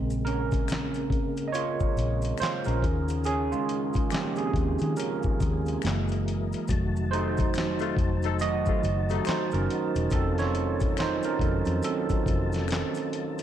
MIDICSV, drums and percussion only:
0, 0, Header, 1, 2, 480
1, 0, Start_track
1, 0, Tempo, 857143
1, 1825, Time_signature, 4, 2, 24, 8
1, 7520, End_track
2, 0, Start_track
2, 0, Title_t, "Drums"
2, 57, Note_on_c, 9, 82, 49
2, 113, Note_off_c, 9, 82, 0
2, 150, Note_on_c, 9, 42, 59
2, 206, Note_off_c, 9, 42, 0
2, 288, Note_on_c, 9, 82, 44
2, 293, Note_on_c, 9, 36, 88
2, 301, Note_on_c, 9, 42, 48
2, 344, Note_off_c, 9, 82, 0
2, 349, Note_off_c, 9, 36, 0
2, 357, Note_off_c, 9, 42, 0
2, 382, Note_on_c, 9, 26, 73
2, 382, Note_on_c, 9, 82, 72
2, 390, Note_on_c, 9, 42, 70
2, 404, Note_on_c, 9, 38, 98
2, 410, Note_on_c, 9, 39, 79
2, 438, Note_off_c, 9, 26, 0
2, 438, Note_off_c, 9, 82, 0
2, 446, Note_off_c, 9, 42, 0
2, 460, Note_off_c, 9, 38, 0
2, 466, Note_off_c, 9, 39, 0
2, 527, Note_on_c, 9, 82, 39
2, 536, Note_on_c, 9, 42, 31
2, 583, Note_off_c, 9, 82, 0
2, 592, Note_off_c, 9, 42, 0
2, 616, Note_on_c, 9, 36, 91
2, 629, Note_on_c, 9, 42, 49
2, 672, Note_off_c, 9, 36, 0
2, 685, Note_off_c, 9, 42, 0
2, 767, Note_on_c, 9, 82, 43
2, 770, Note_on_c, 9, 42, 39
2, 823, Note_off_c, 9, 82, 0
2, 826, Note_off_c, 9, 42, 0
2, 861, Note_on_c, 9, 82, 63
2, 868, Note_on_c, 9, 42, 87
2, 917, Note_off_c, 9, 82, 0
2, 924, Note_off_c, 9, 42, 0
2, 1007, Note_on_c, 9, 82, 43
2, 1011, Note_on_c, 9, 36, 72
2, 1063, Note_off_c, 9, 82, 0
2, 1067, Note_off_c, 9, 36, 0
2, 1104, Note_on_c, 9, 82, 44
2, 1112, Note_on_c, 9, 42, 58
2, 1160, Note_off_c, 9, 82, 0
2, 1168, Note_off_c, 9, 42, 0
2, 1242, Note_on_c, 9, 82, 39
2, 1258, Note_on_c, 9, 42, 49
2, 1298, Note_off_c, 9, 82, 0
2, 1314, Note_off_c, 9, 42, 0
2, 1331, Note_on_c, 9, 26, 60
2, 1331, Note_on_c, 9, 82, 64
2, 1353, Note_on_c, 9, 42, 79
2, 1363, Note_on_c, 9, 38, 97
2, 1368, Note_on_c, 9, 39, 80
2, 1387, Note_off_c, 9, 26, 0
2, 1387, Note_off_c, 9, 82, 0
2, 1409, Note_off_c, 9, 42, 0
2, 1419, Note_off_c, 9, 38, 0
2, 1424, Note_off_c, 9, 39, 0
2, 1480, Note_on_c, 9, 82, 47
2, 1501, Note_on_c, 9, 42, 32
2, 1536, Note_off_c, 9, 82, 0
2, 1557, Note_off_c, 9, 42, 0
2, 1582, Note_on_c, 9, 36, 92
2, 1589, Note_on_c, 9, 42, 59
2, 1638, Note_off_c, 9, 36, 0
2, 1645, Note_off_c, 9, 42, 0
2, 1727, Note_on_c, 9, 82, 49
2, 1736, Note_on_c, 9, 42, 38
2, 1783, Note_off_c, 9, 82, 0
2, 1792, Note_off_c, 9, 42, 0
2, 1814, Note_on_c, 9, 82, 63
2, 1827, Note_on_c, 9, 42, 87
2, 1870, Note_off_c, 9, 82, 0
2, 1883, Note_off_c, 9, 42, 0
2, 1973, Note_on_c, 9, 82, 49
2, 2029, Note_off_c, 9, 82, 0
2, 2067, Note_on_c, 9, 42, 60
2, 2123, Note_off_c, 9, 42, 0
2, 2203, Note_on_c, 9, 82, 46
2, 2213, Note_on_c, 9, 36, 92
2, 2218, Note_on_c, 9, 42, 50
2, 2259, Note_off_c, 9, 82, 0
2, 2269, Note_off_c, 9, 36, 0
2, 2274, Note_off_c, 9, 42, 0
2, 2299, Note_on_c, 9, 26, 66
2, 2299, Note_on_c, 9, 82, 70
2, 2307, Note_on_c, 9, 42, 74
2, 2321, Note_on_c, 9, 38, 112
2, 2327, Note_on_c, 9, 39, 86
2, 2355, Note_off_c, 9, 26, 0
2, 2355, Note_off_c, 9, 82, 0
2, 2363, Note_off_c, 9, 42, 0
2, 2377, Note_off_c, 9, 38, 0
2, 2383, Note_off_c, 9, 39, 0
2, 2441, Note_on_c, 9, 82, 40
2, 2455, Note_on_c, 9, 42, 32
2, 2497, Note_off_c, 9, 82, 0
2, 2511, Note_off_c, 9, 42, 0
2, 2540, Note_on_c, 9, 36, 85
2, 2552, Note_on_c, 9, 42, 52
2, 2596, Note_off_c, 9, 36, 0
2, 2608, Note_off_c, 9, 42, 0
2, 2680, Note_on_c, 9, 82, 42
2, 2697, Note_on_c, 9, 42, 39
2, 2736, Note_off_c, 9, 82, 0
2, 2753, Note_off_c, 9, 42, 0
2, 2780, Note_on_c, 9, 82, 67
2, 2798, Note_on_c, 9, 42, 89
2, 2836, Note_off_c, 9, 82, 0
2, 2854, Note_off_c, 9, 42, 0
2, 2927, Note_on_c, 9, 82, 44
2, 2936, Note_on_c, 9, 36, 73
2, 2983, Note_off_c, 9, 82, 0
2, 2992, Note_off_c, 9, 36, 0
2, 3025, Note_on_c, 9, 82, 47
2, 3026, Note_on_c, 9, 36, 81
2, 3037, Note_on_c, 9, 42, 58
2, 3081, Note_off_c, 9, 82, 0
2, 3082, Note_off_c, 9, 36, 0
2, 3093, Note_off_c, 9, 42, 0
2, 3170, Note_on_c, 9, 82, 38
2, 3182, Note_on_c, 9, 42, 46
2, 3226, Note_off_c, 9, 82, 0
2, 3238, Note_off_c, 9, 42, 0
2, 3258, Note_on_c, 9, 26, 65
2, 3258, Note_on_c, 9, 82, 65
2, 3275, Note_on_c, 9, 42, 70
2, 3285, Note_on_c, 9, 38, 96
2, 3291, Note_on_c, 9, 39, 87
2, 3314, Note_off_c, 9, 26, 0
2, 3314, Note_off_c, 9, 82, 0
2, 3331, Note_off_c, 9, 42, 0
2, 3341, Note_off_c, 9, 38, 0
2, 3347, Note_off_c, 9, 39, 0
2, 3407, Note_on_c, 9, 82, 46
2, 3426, Note_on_c, 9, 42, 33
2, 3463, Note_off_c, 9, 82, 0
2, 3482, Note_off_c, 9, 42, 0
2, 3516, Note_on_c, 9, 42, 62
2, 3572, Note_off_c, 9, 42, 0
2, 3654, Note_on_c, 9, 82, 45
2, 3663, Note_on_c, 9, 42, 37
2, 3710, Note_off_c, 9, 82, 0
2, 3719, Note_off_c, 9, 42, 0
2, 3739, Note_on_c, 9, 82, 67
2, 3747, Note_on_c, 9, 36, 103
2, 3754, Note_on_c, 9, 42, 85
2, 3795, Note_off_c, 9, 82, 0
2, 3803, Note_off_c, 9, 36, 0
2, 3810, Note_off_c, 9, 42, 0
2, 3900, Note_on_c, 9, 82, 55
2, 3956, Note_off_c, 9, 82, 0
2, 3994, Note_on_c, 9, 42, 64
2, 4050, Note_off_c, 9, 42, 0
2, 4128, Note_on_c, 9, 82, 47
2, 4136, Note_on_c, 9, 36, 100
2, 4142, Note_on_c, 9, 42, 46
2, 4184, Note_off_c, 9, 82, 0
2, 4192, Note_off_c, 9, 36, 0
2, 4198, Note_off_c, 9, 42, 0
2, 4222, Note_on_c, 9, 26, 73
2, 4222, Note_on_c, 9, 82, 75
2, 4230, Note_on_c, 9, 42, 68
2, 4244, Note_on_c, 9, 38, 108
2, 4250, Note_on_c, 9, 39, 83
2, 4278, Note_off_c, 9, 26, 0
2, 4278, Note_off_c, 9, 82, 0
2, 4286, Note_off_c, 9, 42, 0
2, 4300, Note_off_c, 9, 38, 0
2, 4306, Note_off_c, 9, 39, 0
2, 4364, Note_on_c, 9, 82, 41
2, 4377, Note_on_c, 9, 42, 36
2, 4420, Note_off_c, 9, 82, 0
2, 4433, Note_off_c, 9, 42, 0
2, 4461, Note_on_c, 9, 36, 95
2, 4471, Note_on_c, 9, 42, 49
2, 4517, Note_off_c, 9, 36, 0
2, 4527, Note_off_c, 9, 42, 0
2, 4606, Note_on_c, 9, 82, 44
2, 4614, Note_on_c, 9, 42, 41
2, 4662, Note_off_c, 9, 82, 0
2, 4670, Note_off_c, 9, 42, 0
2, 4699, Note_on_c, 9, 82, 71
2, 4714, Note_on_c, 9, 42, 88
2, 4755, Note_off_c, 9, 82, 0
2, 4770, Note_off_c, 9, 42, 0
2, 4848, Note_on_c, 9, 82, 45
2, 4856, Note_on_c, 9, 36, 75
2, 4904, Note_off_c, 9, 82, 0
2, 4912, Note_off_c, 9, 36, 0
2, 4946, Note_on_c, 9, 82, 45
2, 4954, Note_on_c, 9, 42, 59
2, 5002, Note_off_c, 9, 82, 0
2, 5010, Note_off_c, 9, 42, 0
2, 5091, Note_on_c, 9, 82, 39
2, 5101, Note_on_c, 9, 42, 47
2, 5147, Note_off_c, 9, 82, 0
2, 5157, Note_off_c, 9, 42, 0
2, 5180, Note_on_c, 9, 26, 62
2, 5180, Note_on_c, 9, 82, 64
2, 5191, Note_on_c, 9, 42, 78
2, 5201, Note_on_c, 9, 38, 105
2, 5206, Note_on_c, 9, 39, 79
2, 5236, Note_off_c, 9, 26, 0
2, 5236, Note_off_c, 9, 82, 0
2, 5247, Note_off_c, 9, 42, 0
2, 5257, Note_off_c, 9, 38, 0
2, 5262, Note_off_c, 9, 39, 0
2, 5327, Note_on_c, 9, 82, 47
2, 5344, Note_on_c, 9, 42, 33
2, 5383, Note_off_c, 9, 82, 0
2, 5400, Note_off_c, 9, 42, 0
2, 5434, Note_on_c, 9, 42, 62
2, 5490, Note_off_c, 9, 42, 0
2, 5575, Note_on_c, 9, 82, 48
2, 5578, Note_on_c, 9, 42, 40
2, 5631, Note_off_c, 9, 82, 0
2, 5634, Note_off_c, 9, 42, 0
2, 5657, Note_on_c, 9, 82, 63
2, 5664, Note_on_c, 9, 36, 98
2, 5668, Note_on_c, 9, 42, 88
2, 5713, Note_off_c, 9, 82, 0
2, 5720, Note_off_c, 9, 36, 0
2, 5724, Note_off_c, 9, 42, 0
2, 5813, Note_on_c, 9, 42, 33
2, 5818, Note_on_c, 9, 82, 52
2, 5825, Note_on_c, 9, 38, 33
2, 5869, Note_off_c, 9, 42, 0
2, 5874, Note_off_c, 9, 82, 0
2, 5881, Note_off_c, 9, 38, 0
2, 5906, Note_on_c, 9, 42, 60
2, 5962, Note_off_c, 9, 42, 0
2, 6048, Note_on_c, 9, 82, 49
2, 6055, Note_on_c, 9, 36, 100
2, 6057, Note_on_c, 9, 42, 48
2, 6104, Note_off_c, 9, 82, 0
2, 6111, Note_off_c, 9, 36, 0
2, 6113, Note_off_c, 9, 42, 0
2, 6143, Note_on_c, 9, 26, 69
2, 6143, Note_on_c, 9, 82, 67
2, 6147, Note_on_c, 9, 42, 75
2, 6161, Note_on_c, 9, 38, 105
2, 6166, Note_on_c, 9, 39, 83
2, 6199, Note_off_c, 9, 26, 0
2, 6199, Note_off_c, 9, 82, 0
2, 6203, Note_off_c, 9, 42, 0
2, 6217, Note_off_c, 9, 38, 0
2, 6222, Note_off_c, 9, 39, 0
2, 6287, Note_on_c, 9, 82, 40
2, 6296, Note_on_c, 9, 42, 36
2, 6343, Note_off_c, 9, 82, 0
2, 6352, Note_off_c, 9, 42, 0
2, 6381, Note_on_c, 9, 36, 96
2, 6392, Note_on_c, 9, 42, 52
2, 6437, Note_off_c, 9, 36, 0
2, 6448, Note_off_c, 9, 42, 0
2, 6525, Note_on_c, 9, 82, 47
2, 6535, Note_on_c, 9, 42, 42
2, 6581, Note_off_c, 9, 82, 0
2, 6591, Note_off_c, 9, 42, 0
2, 6622, Note_on_c, 9, 82, 72
2, 6633, Note_on_c, 9, 42, 94
2, 6678, Note_off_c, 9, 82, 0
2, 6689, Note_off_c, 9, 42, 0
2, 6772, Note_on_c, 9, 82, 40
2, 6776, Note_on_c, 9, 36, 69
2, 6779, Note_on_c, 9, 42, 31
2, 6828, Note_off_c, 9, 82, 0
2, 6832, Note_off_c, 9, 36, 0
2, 6835, Note_off_c, 9, 42, 0
2, 6866, Note_on_c, 9, 36, 84
2, 6870, Note_on_c, 9, 82, 44
2, 6877, Note_on_c, 9, 42, 64
2, 6922, Note_off_c, 9, 36, 0
2, 6926, Note_off_c, 9, 82, 0
2, 6933, Note_off_c, 9, 42, 0
2, 7012, Note_on_c, 9, 82, 42
2, 7024, Note_on_c, 9, 42, 49
2, 7033, Note_on_c, 9, 38, 35
2, 7068, Note_off_c, 9, 82, 0
2, 7080, Note_off_c, 9, 42, 0
2, 7089, Note_off_c, 9, 38, 0
2, 7101, Note_on_c, 9, 26, 66
2, 7101, Note_on_c, 9, 82, 66
2, 7115, Note_on_c, 9, 42, 74
2, 7125, Note_on_c, 9, 38, 98
2, 7130, Note_on_c, 9, 39, 83
2, 7157, Note_off_c, 9, 26, 0
2, 7157, Note_off_c, 9, 82, 0
2, 7171, Note_off_c, 9, 42, 0
2, 7181, Note_off_c, 9, 38, 0
2, 7186, Note_off_c, 9, 39, 0
2, 7249, Note_on_c, 9, 82, 44
2, 7265, Note_on_c, 9, 42, 33
2, 7305, Note_off_c, 9, 82, 0
2, 7321, Note_off_c, 9, 42, 0
2, 7353, Note_on_c, 9, 42, 59
2, 7409, Note_off_c, 9, 42, 0
2, 7495, Note_on_c, 9, 82, 49
2, 7499, Note_on_c, 9, 42, 40
2, 7520, Note_off_c, 9, 42, 0
2, 7520, Note_off_c, 9, 82, 0
2, 7520, End_track
0, 0, End_of_file